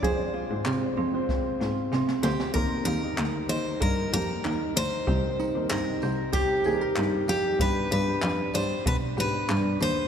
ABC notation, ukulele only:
X:1
M:4/4
L:1/16
Q:1/4=95
K:Eb
V:1 name="Ukulele"
A2 F2 C2 C4 F2 C2 c2 | B2 E2 E2 e2 B2 G2 E2 E2 | G2 E2 E2 c2 G2 A B E2 E2 | z2 D2 D2 d4 G2 D2 D2 |]